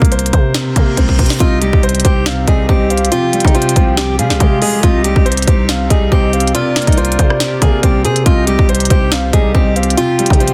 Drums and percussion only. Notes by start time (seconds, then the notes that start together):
0.02 kick, closed hi-hat
0.12 closed hi-hat
0.19 closed hi-hat
0.26 closed hi-hat
0.33 kick, closed hi-hat
0.54 snare, closed hi-hat
0.76 kick, closed hi-hat
0.97 kick, closed hi-hat
1.09 kick
1.19 kick, closed hi-hat
1.26 closed hi-hat
1.30 snare, closed hi-hat
1.40 kick, closed hi-hat
1.62 closed hi-hat
1.73 kick
1.83 closed hi-hat
1.89 closed hi-hat
1.95 closed hi-hat
2.00 closed hi-hat
2.05 kick, closed hi-hat
2.26 snare, closed hi-hat
2.48 kick, closed hi-hat
2.69 kick
2.90 closed hi-hat
2.97 closed hi-hat
3.05 closed hi-hat
3.12 closed hi-hat
3.33 closed hi-hat
3.40 closed hi-hat
3.45 kick, closed hi-hat
3.55 closed hi-hat
3.62 closed hi-hat
3.69 closed hi-hat
3.76 kick, closed hi-hat
3.97 snare, closed hi-hat
4.19 closed hi-hat
4.30 snare
4.40 kick, closed hi-hat
4.62 open hi-hat
4.83 kick, closed hi-hat
5.04 closed hi-hat
5.16 kick
5.26 closed hi-hat
5.32 closed hi-hat
5.37 closed hi-hat
5.42 closed hi-hat
5.48 kick, closed hi-hat
5.69 snare, closed hi-hat
5.90 kick, closed hi-hat
6.12 kick
6.33 closed hi-hat
6.40 closed hi-hat
6.47 closed hi-hat
6.55 closed hi-hat
6.76 snare, closed hi-hat
6.82 closed hi-hat
6.87 kick, closed hi-hat
6.92 closed hi-hat
6.98 closed hi-hat
7.05 closed hi-hat
7.12 closed hi-hat
7.19 kick, closed hi-hat
7.30 cross-stick
7.40 snare, closed hi-hat
7.62 kick, closed hi-hat
7.83 kick, closed hi-hat
8.05 closed hi-hat
8.16 closed hi-hat
8.26 kick, closed hi-hat
8.47 closed hi-hat
8.59 kick
8.69 closed hi-hat
8.75 closed hi-hat
8.80 closed hi-hat
8.85 closed hi-hat
8.90 kick, closed hi-hat
9.12 snare, closed hi-hat
9.33 kick, closed hi-hat
9.55 kick
9.76 closed hi-hat
9.83 closed hi-hat
9.90 closed hi-hat
9.98 closed hi-hat
10.19 closed hi-hat
10.26 closed hi-hat
10.30 kick, closed hi-hat
10.40 closed hi-hat
10.48 closed hi-hat